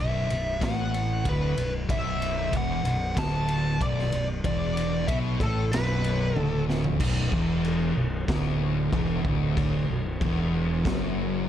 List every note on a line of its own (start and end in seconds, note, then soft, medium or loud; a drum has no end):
0.00 0.28 B0 loud
0.00 0.28 B1 loud
0.00 0.63 E5 loud
0.30 0.59 B0 medium
0.30 0.55 B1 medium
0.30 ride medium
0.60 1.21 A1 medium
0.60 1.23 A2 loud
0.60 kick loud
0.60 snare loud
0.60 ride medium
0.64 1.28 F#5 medium
0.94 ride medium
1.24 1.55 D1 medium
1.24 1.55 D2 loud
1.24 kick loud
1.24 ride medium
1.29 1.72 B4 medium
1.56 1.87 B0 medium
1.56 1.82 B1 medium
1.56 ride medium
1.87 2.49 B0 medium
1.87 2.51 B1 loud
1.87 2.55 E5 loud
1.87 kick loud
1.87 ride loud
2.22 ride medium
2.51 2.83 E1 medium
2.51 2.83 E2 medium
2.51 kick loud
2.51 ride medium
2.57 3.20 F#5 loud
2.84 3.14 B0 medium
2.84 3.10 B1 medium
2.84 ride medium
3.16 3.77 D1 medium
3.16 3.79 D2 loud
3.16 3.83 A5 loud
3.16 kick loud
3.16 snare loud
3.16 ride medium
3.48 ride medium
3.80 4.11 B0 medium
3.80 4.11 B1 loud
3.80 4.26 D5 medium
3.80 kick loud
3.80 ride medium
3.99 snare soft
4.12 4.43 B0 medium
4.12 4.38 B1 medium
4.12 ride medium
4.44 5.04 E1 loud
4.44 5.07 E2 loud
4.44 5.11 D5 medium
4.44 kick loud
4.44 ride loud
4.77 ride medium
5.07 5.38 B1 medium
5.07 5.39 B2 loud
5.07 5.16 E5 loud
5.07 kick loud
5.07 ride loud
5.40 5.70 A1 loud
5.40 5.71 A2 loud
5.40 5.73 A4 medium
5.40 kick loud
5.40 ride medium
5.71 6.33 B0 medium
5.71 6.35 B1 loud
5.71 6.37 B4 medium
5.71 snare loud
5.71 ride loud
6.04 ride medium
6.36 6.96 D1 medium
6.36 6.99 D2 loud
6.36 6.64 A4 medium
6.36 high tom medium
6.70 snare medium
6.84 floor tom medium
7.00 7.30 B0 loud
7.00 7.31 B1 loud
7.00 kick loud
7.00 crash loud
7.00 crash medium
7.32 7.92 E1 medium
7.32 7.95 E2 loud
7.32 kick loud
7.64 crash medium
7.96 8.26 B0 medium
7.96 8.22 B1 medium
8.28 8.89 D1 medium
8.28 8.91 D2 loud
8.28 kick loud
8.28 snare loud
8.28 crash medium
8.92 9.22 E1 loud
8.92 9.23 E2 loud
8.92 kick loud
8.92 crash medium
9.25 9.85 D1 medium
9.25 9.88 D2 loud
9.25 kick loud
9.57 kick loud
9.57 crash medium
9.90 10.19 B0 medium
9.90 10.15 B1 medium
10.21 10.81 E1 medium
10.21 10.84 E2 loud
10.21 kick loud
10.21 crash medium
10.85 11.45 F#1 medium
10.85 11.48 F#2 loud
10.85 kick loud
10.85 snare loud
10.85 crash medium